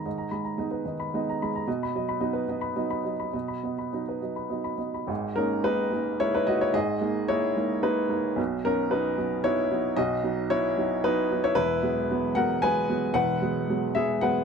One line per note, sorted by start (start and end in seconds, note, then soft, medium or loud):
0.00 0.21 D#3 soft
0.00 0.14 A#5 soft
0.06 1.63 G#2 soft
0.06 0.27 D#5 soft
0.18 0.40 A#5 soft
0.31 0.56 G#3 soft
0.31 0.53 B5 soft
0.45 0.67 A#5 soft
0.58 0.83 G#3 soft
0.58 0.84 B3 soft
0.58 0.84 D#4 soft
0.58 0.80 D#5 soft
0.71 0.94 B4 soft
0.85 1.29 D#3 soft
0.85 1.07 D#5 soft
1.00 1.21 B5 soft
1.14 1.38 G#3 soft
1.14 1.38 B3 soft
1.14 1.38 D#4 soft
1.14 1.35 D#5 soft
1.29 1.49 A#5 soft
1.42 1.68 G#3 soft
1.42 1.62 B5 soft
1.55 1.68 A#5 medium
1.67 3.30 B2 medium
1.67 1.89 D#5 medium
1.83 2.03 B5 soft
1.95 2.19 F#3 soft
1.95 2.16 D#5 medium
2.09 2.29 B5 medium
2.21 2.45 F#3 soft
2.21 2.45 B3 soft
2.21 2.45 D#4 medium
2.21 2.42 D#5 medium
2.33 2.56 B4 medium
2.48 2.75 B3 soft
2.48 2.71 D#5 medium
2.61 2.84 B5 medium
2.76 3.01 F#3 soft
2.76 3.02 B3 soft
2.76 3.02 D#4 soft
2.76 2.99 D#5 soft
2.90 3.13 B5 soft
3.04 3.52 F#3 soft
3.04 3.27 D#5 soft
3.20 3.43 B5 soft
3.33 5.06 B2 medium
3.33 3.57 D#5 soft
3.48 3.72 B5 soft
3.63 3.92 B3 soft
3.63 3.88 D#5 soft
3.78 4.02 B5 soft
3.93 4.20 F#3 soft
3.93 4.20 B3 soft
3.93 4.20 D#4 soft
3.93 4.17 D#5 soft
4.09 4.32 B4 soft
4.22 4.49 F#3 soft
4.22 4.46 D#5 soft
4.36 4.60 B5 soft
4.50 4.77 F#3 soft
4.50 4.77 B3 soft
4.50 4.78 D#4 soft
4.50 4.74 D#5 soft
4.64 4.88 B5 soft
4.78 5.08 B3 soft
4.78 5.02 D#5 soft
4.94 5.09 B5 soft
5.07 5.35 G#1 medium
5.07 5.36 G#2 medium
5.36 5.62 G#3 soft
5.36 5.62 A#3 soft
5.36 5.63 C#4 medium
5.36 5.63 D#4 medium
5.36 5.65 A#4 medium
5.64 5.90 G#3 soft
5.64 5.90 A#3 soft
5.64 5.91 D#4 medium
5.64 6.20 B4 loud
5.92 6.17 G#3 soft
5.92 6.18 A#3 soft
5.92 6.18 D#4 soft
6.20 6.45 G#3 medium
6.20 6.45 A#3 soft
6.20 6.34 D#4 medium
6.20 6.33 E4 medium
6.20 6.34 C#5 loud
6.34 6.47 D#4 medium
6.34 6.48 B4 medium
6.47 6.72 G#3 soft
6.47 6.72 A#3 soft
6.47 6.72 D#4 medium
6.47 6.61 F#4 medium
6.47 6.61 D#5 medium
6.61 6.74 E4 medium
6.61 6.75 C#5 medium
6.73 7.00 G#1 medium
6.73 7.01 G#2 medium
6.73 7.25 G#4 medium
6.73 7.29 D#5 loud
7.01 7.26 G#3 soft
7.01 7.26 A#3 soft
7.01 7.26 D#4 soft
7.28 7.54 G#3 medium
7.28 7.54 A#3 soft
7.28 7.55 D#4 medium
7.28 7.80 E4 medium
7.28 7.83 C#5 loud
7.57 7.81 G#3 soft
7.57 7.81 A#3 soft
7.57 7.82 D#4 soft
7.83 8.08 G#3 soft
7.83 8.08 A#3 soft
7.83 8.08 D#4 medium
7.83 8.38 B4 medium
8.09 8.34 G#3 soft
8.09 8.35 A#3 soft
8.09 8.35 D#4 medium
8.36 8.63 B1 medium
8.36 8.64 B2 medium
8.65 8.89 F#3 soft
8.65 8.89 B3 medium
8.65 8.90 C#4 medium
8.65 8.89 D#4 medium
8.65 8.91 A#4 loud
8.91 9.15 F#3 soft
8.91 9.15 B3 medium
8.91 9.17 D#4 medium
8.91 9.44 B4 medium
9.17 9.41 F#3 soft
9.17 9.42 B3 soft
9.17 9.42 D#4 medium
9.44 9.68 F#3 medium
9.44 9.68 B3 medium
9.44 9.69 D#4 medium
9.44 9.94 E4 medium
9.44 9.97 C#5 loud
9.71 9.95 F#3 medium
9.71 9.95 B3 medium
9.71 9.95 D#4 medium
9.96 10.23 B1 medium
9.96 10.24 B2 medium
9.96 10.48 F#4 medium
9.96 10.51 D#5 loud
10.23 10.48 F#3 medium
10.23 10.48 B3 medium
10.23 10.48 D#4 medium
10.50 10.75 F#3 medium
10.50 10.75 B3 medium
10.50 10.75 D#4 medium
10.50 11.01 E4 medium
10.50 11.04 C#5 loud
10.77 11.02 F#3 medium
10.77 11.02 B3 medium
10.77 11.02 D#4 medium
11.04 11.28 F#3 medium
11.04 11.28 B3 medium
11.04 11.30 D#4 medium
11.04 11.44 B4 loud
11.31 11.54 F#3 medium
11.31 11.55 B3 medium
11.31 11.55 D#4 medium
11.44 11.55 E4 medium
11.44 11.57 C#5 loud
11.55 11.81 E1 medium
11.55 11.82 E2 medium
11.55 12.31 E4 medium
11.55 12.34 B4 loud
11.82 12.06 F#3 medium
11.82 12.07 G#3 medium
11.82 12.07 B3 medium
12.10 12.33 F#3 medium
12.10 12.33 G#3 medium
12.10 12.34 B3 medium
12.35 12.59 F#3 medium
12.35 12.59 G#3 medium
12.35 12.59 B3 medium
12.35 12.60 A#4 medium
12.35 12.61 F#5 loud
12.62 12.86 F#3 medium
12.62 12.86 G#3 medium
12.62 12.86 B3 medium
12.62 13.11 B4 medium
12.62 13.14 G#5 loud
12.89 13.12 F#3 medium
12.89 13.12 G#3 medium
12.89 13.13 B3 medium
13.13 13.40 E1 medium
13.13 13.40 E2 medium
13.13 13.91 B4 medium
13.13 13.95 F#5 loud
13.42 13.66 F#3 medium
13.42 13.66 G#3 medium
13.42 13.66 B3 medium
13.69 13.93 F#3 medium
13.69 13.93 G#3 medium
13.69 13.93 B3 medium
13.95 14.19 F#3 soft
13.95 14.19 G#3 soft
13.95 14.20 B3 medium
13.95 14.20 G#4 medium
13.95 14.22 E5 medium
14.21 14.44 F#3 medium
14.21 14.44 G#3 medium
14.21 14.44 B3 medium
14.21 14.44 B4 medium
14.21 14.44 F#5 loud